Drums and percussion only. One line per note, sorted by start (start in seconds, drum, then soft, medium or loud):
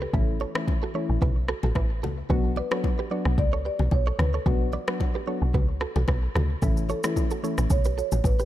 0.14 kick loud
0.14 low conga medium
0.40 low bongo medium
0.55 cross-stick loud
0.55 high bongo medium
0.68 kick medium
0.68 high bongo medium
1.22 kick loud
1.22 low conga medium
1.48 cross-stick medium
1.63 low bongo medium
1.75 kick medium
1.75 cross-stick medium
1.75 high bongo medium
2.04 low bongo medium
2.04 low conga medium
2.30 kick loud
2.30 low conga medium
2.56 low bongo medium
2.71 cross-stick loud
2.71 high bongo medium
2.84 kick medium
2.84 high bongo medium
3.25 cross-stick medium
3.38 kick loud
3.38 low conga medium
3.79 low bongo medium
3.91 kick medium
3.91 high bongo medium
4.19 cross-stick medium
4.19 low bongo medium
4.19 low conga medium
4.46 kick loud
4.46 low conga medium
4.73 low bongo medium
4.88 cross-stick loud
4.88 high bongo medium
5.00 kick medium
5.00 high bongo medium
5.54 kick loud
5.54 low conga medium
5.81 cross-stick medium
5.96 low bongo medium
6.08 kick medium
6.08 cross-stick medium
6.08 high bongo medium
6.35 cross-stick medium
6.35 low bongo medium
6.35 low conga medium
6.62 kick loud
6.62 low conga medium
6.62 shaker medium
6.77 shaker medium
6.89 low bongo medium
6.89 shaker medium
7.04 cross-stick loud
7.04 high bongo medium
7.04 shaker loud
7.16 kick medium
7.16 high bongo medium
7.16 shaker medium
7.31 shaker medium
7.44 shaker medium
7.58 cross-stick medium
7.58 shaker medium
7.70 kick loud
7.70 low conga medium
7.70 shaker medium
7.84 shaker medium
7.98 shaker medium
8.12 low bongo medium
8.12 shaker loud
8.24 kick medium
8.24 high bongo medium
8.24 shaker medium
8.39 shaker medium